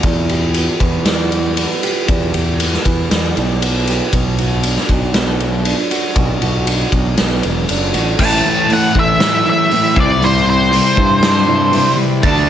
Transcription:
0.03 0.67 E2 medium
0.03 1.33 E2 medium
0.03 kick loud
0.03 ride medium
0.29 1.58 G4 medium
0.29 ride soft
0.54 1.57 B3 medium
0.54 ride medium
0.80 1.65 E2 medium
0.80 1.31 E3 medium
0.80 kick medium
0.80 ride medium
1.05 2.34 G3 medium
1.05 snare loud
1.05 ride medium
1.32 2.60 E3 medium
1.32 ride medium
1.57 2.60 B3 medium
1.57 ride medium
1.83 2.33 G4 medium
1.83 ride medium
2.08 2.30 E2 medium
2.08 3.37 E2 medium
2.08 kick loud
2.08 ride medium
2.34 2.76 E2 medium
2.34 3.62 G4 medium
2.34 ride medium
2.60 3.61 B3 medium
2.60 ride medium
2.73 snare soft
2.85 3.07 E2 medium
2.85 3.36 E3 medium
2.85 kick medium
2.85 ride medium
3.11 3.32 E2 medium
3.11 4.13 G3 medium
3.11 snare loud
3.11 ride medium
3.37 3.99 B1 medium
3.37 4.13 E3 medium
3.37 ride medium
3.62 4.63 B3 medium
3.62 ride medium
3.87 4.13 G4 medium
3.87 ride medium
4.13 4.76 B1 loud
4.13 5.41 B2 medium
4.13 kick loud
4.13 ride medium
4.38 5.66 F#4 medium
4.38 ride medium
4.63 5.64 D4 medium
4.63 ride medium
4.76 snare soft
4.89 5.72 B1 medium
4.89 5.39 F#3 medium
4.89 kick medium
4.89 ride medium
5.14 6.42 B3 medium
5.14 snare loud
5.14 ride medium
5.40 6.67 F#3 medium
5.40 ride medium
5.65 6.66 D4 medium
5.65 ride medium
5.91 6.41 F#4 medium
5.91 ride medium
6.16 6.37 B1 medium
6.16 7.44 B2 medium
6.16 kick loud
6.16 ride medium
6.42 6.84 B1 medium
6.42 7.69 F#4 medium
6.42 ride medium
6.67 7.68 D4 medium
6.67 ride medium
6.92 7.14 B1 medium
6.92 7.42 F#3 medium
6.92 kick medium
6.92 ride medium
7.18 7.40 B1 medium
7.18 8.20 B3 medium
7.18 snare loud
7.18 ride medium
7.43 7.67 E1 medium
7.43 8.19 F#3 medium
7.43 ride medium
7.69 7.92 F#1 medium
7.69 8.20 D4 medium
7.69 ride medium
7.94 8.17 A1 medium
7.94 8.20 F#4 medium
7.94 ride medium
8.19 8.40 A1 loud
8.19 8.43 A2 medium
8.19 8.95 A2 medium
8.19 8.69 E3 medium
8.19 8.44 E3 medium
8.19 8.44 A3 medium
8.19 8.70 A3 medium
8.19 8.71 C#4 medium
8.19 8.73 E4 loud
8.19 8.72 A5 loud
8.19 kick loud
8.19 crash loud
8.32 snare soft
8.45 8.68 A2 medium
8.45 8.87 A2 medium
8.45 8.68 E3 medium
8.69 8.93 A2 medium
8.69 8.93 E3 medium
8.69 9.71 E3 medium
8.69 8.98 A3 medium
8.69 8.96 C#4 medium
8.69 8.95 E4 medium
8.69 open hi-hat soft
8.73 8.96 F#5 loud
8.95 9.16 A1 medium
8.95 9.18 A2 medium
8.95 9.18 E3 medium
8.95 9.48 A3 medium
8.95 9.47 C#4 medium
8.95 9.45 E4 medium
8.95 kick medium
8.99 9.48 E5 medium
9.20 9.44 A2 medium
9.20 9.44 E3 medium
9.20 snare loud
9.20 open hi-hat medium
9.45 9.68 A2 medium
9.45 9.68 E3 medium
9.45 9.72 C#4 medium
9.45 9.72 E4 medium
9.49 9.71 A3 medium
9.49 10.00 E5 medium
9.70 9.93 A2 medium
9.70 9.95 A2 medium
9.70 9.94 E3 medium
9.70 9.95 E3 medium
9.70 9.96 A3 medium
9.70 9.96 C#4 medium
9.70 open hi-hat medium
9.74 9.95 E4 loud
9.95 10.79 C2 medium
9.95 10.20 C3 medium
9.95 10.20 G3 medium
9.95 10.22 G3 medium
9.95 10.20 C4 medium
9.95 10.23 C4 medium
9.95 10.23 E4 medium
9.95 kick loud
9.99 10.20 C3 medium
9.99 10.21 E3 medium
9.99 10.25 D5 medium
10.21 10.44 C3 medium
10.21 10.97 C3 medium
10.21 10.71 E3 medium
10.21 10.44 G3 medium
10.21 10.72 G3 medium
10.21 10.73 C4 medium
10.21 10.74 E4 medium
10.21 10.48 C5 medium
10.21 open hi-hat medium
10.45 10.69 C3 medium
10.45 10.69 G3 medium
10.50 11.96 C5 medium
10.71 10.95 C3 medium
10.71 11.23 E3 medium
10.71 10.95 G3 medium
10.71 10.99 G3 medium
10.71 10.98 C4 medium
10.71 open hi-hat medium
10.75 10.96 E4 medium
10.96 11.80 G2 medium
10.96 11.20 C3 medium
10.96 11.20 G3 medium
10.96 11.48 C4 medium
10.96 11.46 E4 medium
10.96 kick medium
11.01 11.49 G3 medium
11.22 11.45 C3 medium
11.22 11.45 G3 medium
11.22 snare loud
11.22 open hi-hat medium
11.47 11.70 C3 medium
11.47 11.70 G3 medium
11.47 11.74 G3 medium
11.47 11.75 C4 medium
11.47 11.75 E4 medium
11.73 11.96 C3 medium
11.73 12.22 C3 medium
11.73 12.23 E3 medium
11.73 11.96 G3 medium
11.73 12.23 G3 medium
11.73 12.24 C4 loud
11.73 12.24 E4 loud
11.73 open hi-hat medium
11.97 12.21 C3 medium
11.97 12.21 G3 medium
12.22 12.44 D2 loud
12.22 12.47 D3 medium
12.22 12.49 D3 medium
12.22 12.47 A3 medium
12.22 12.49 A3 medium
12.22 12.47 D4 loud
12.22 12.49 D4 medium
12.22 12.49 A5 medium
12.22 kick loud
12.22 open hi-hat medium
12.26 12.49 F#4 loud
12.37 snare soft

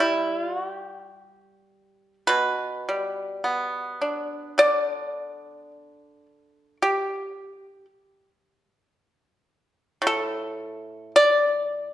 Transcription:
0.00 2.28 G3 medium
0.00 0.35 E4 medium
0.35 0.53 F4 medium
0.53 0.70 F#4 medium
0.70 2.25 G4 medium
2.27 4.58 B2 medium
2.27 4.53 B4 medium
2.89 4.57 G3 soft
3.44 5.71 B3 soft
4.01 6.26 D4 soft
4.58 7.88 D3 medium
4.58 6.77 D5 medium
6.82 7.85 G4 medium
10.02 11.94 A2 medium
10.07 11.11 A4 medium
11.16 11.94 D5 loud

